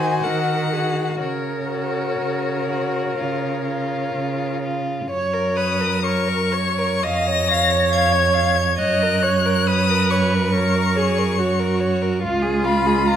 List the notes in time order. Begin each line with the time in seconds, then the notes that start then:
Already playing: D#3 F#4 C5 G#5
0.23 D#3 A#4 F#5
0.72 F#4 G#4
1.21 C#3 A#4 C#5
1.70 F#4
2.20 C#3
2.69 F#4
3.18 C#3 F4
3.67 F4
4.14 C#3
4.63 F4
5.10 F#2 C#5
5.33 A#4
5.56 B4 C#5 D#6
5.81 A#4
6.04 A#4 C#5 C#6
6.29 A#4
6.53 C#5
6.79 A#4
7.03 F2 D#5 F5 A#6
7.27 C#5
7.49 C#5 F5
7.71 C#5
7.92 F5 G#6
8.12 C#5
8.34 F5
8.56 C#5
8.78 F#2 C#5 D#5 F#6
9.02 A#4
9.22 C#5
9.46 A#4
9.67 B4 C#5 D#6
9.90 A#4
10.10 C#5 C#6
10.34 A#4
10.54 A#4 C#5
10.76 A#4
10.96 G#4 C#5
11.18 A#4
11.39 F#4 C#5
11.60 A#4
11.80 C#5
12.02 A#4
12.22 C#2 F4
12.42 G#4
12.65 F4 B5
12.86 G#4
13.07 F4 A#5